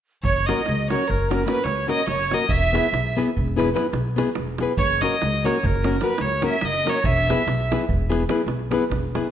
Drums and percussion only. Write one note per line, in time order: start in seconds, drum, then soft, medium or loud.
0.25 davul low medium
0.36 davul high soft
0.49 davul high medium
0.57 davul high soft
0.66 davul high medium
0.90 davul high medium
1.00 davul high soft
1.09 davul low medium
1.21 davul high soft
1.31 davul high medium
1.40 davul high soft
1.48 davul high medium
1.57 davul high soft
1.66 davul high medium
1.89 davul high medium
1.99 davul high soft
2.07 davul high medium
2.20 davul high soft
2.31 davul high medium
2.49 davul low medium
2.62 davul high soft
2.75 davul high medium
2.85 davul high soft
2.94 davul high medium
3.18 davul high medium
3.28 davul high soft
3.37 davul low medium
3.48 davul high soft
3.59 davul high medium
3.68 davul high soft
3.76 davul high medium
3.85 davul high soft
3.93 davul high medium
4.18 davul high medium
4.28 davul high soft
4.35 davul high medium
4.47 davul high soft
4.58 davul high medium
4.77 davul low medium
4.89 davul high soft
5.02 davul high medium
5.11 davul high soft
5.22 davul high medium
5.46 davul high medium
5.56 davul high soft
5.64 davul low medium
5.76 davul high soft
5.84 davul high medium
5.93 davul high soft
6.01 davul high medium
6.11 davul high soft
6.18 davul high medium
6.42 davul high medium
6.53 davul high soft
6.61 davul high medium
6.75 davul high soft
6.87 davul high medium
7.04 davul low loud
7.17 davul high soft
7.30 davul high medium
7.38 davul high soft
7.48 davul high medium
7.60 davul high soft
7.72 davul high medium
7.81 davul high soft
7.89 davul low medium
8.12 davul high medium
8.20 davul high soft
8.29 davul high medium
8.38 davul high soft
8.48 davul high medium
8.59 davul high soft
8.71 davul high medium
8.82 davul high soft
8.91 davul high medium
8.91 davul low medium
9.03 davul high soft
9.15 davul high medium
9.25 davul high soft